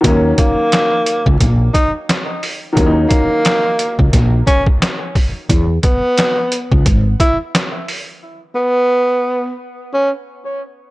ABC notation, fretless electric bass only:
X:1
M:4/4
L:1/16
Q:"Swing 16ths" 1/4=88
K:D#phr
V:1 name="Fretless electric bass" clef=bass
D,,2 z4 z C,, A,,,2 z6 | D,,2 z4 z C,, A,,,2 z6 | E,,2 z4 z C,, G,,,2 z6 | z16 |]